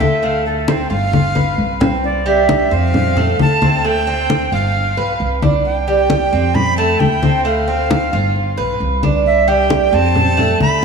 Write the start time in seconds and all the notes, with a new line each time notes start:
Already playing: D2
0.00 A4 E5, high conga
0.23 A3 F5, high conga
0.46 A4, high conga
0.68 C4 C5, high conga
0.90 G1 F4 F5
1.13 high conga
1.35 B4, high conga
1.58 C2
1.80 C4, low conga
2.04 D5, high conga
2.26 G3 E5, high conga
2.49 high conga
2.71 F2 C4 F5, high conga
2.94 high conga, low conga
3.17 A3, high conga, low conga
3.39 D2 A5, high conga
3.62 C4, high conga
3.84 A3 G5, high conga
4.07 C4, high conga
4.30 high conga
4.52 G1 F4 F5
4.75 high conga
4.97 B1 B4, high conga
5.20 C2, high conga
5.42 D4, high conga
5.65 G5, high conga
5.87 G3, high conga
6.10 high conga
6.32 F2 C4, high conga
6.55 B5, high conga, low conga
6.77 A3 A5, high conga
7.00 D2 G5, high conga
7.23 C4, high conga
7.45 A3 F5, high conga
7.68 C4, high conga
7.91 high conga
8.13 G1 F4
8.36 high conga
8.57 B1 B4, high conga
8.80 C2, high conga
9.03 D4, high conga
9.26 E5, high conga
9.48 G3 G5, high conga
9.70 high conga
9.92 F2 C4 A5, high conga
10.16 high conga, low conga
10.37 A3, high conga, low conga
10.60 D2 B5, high conga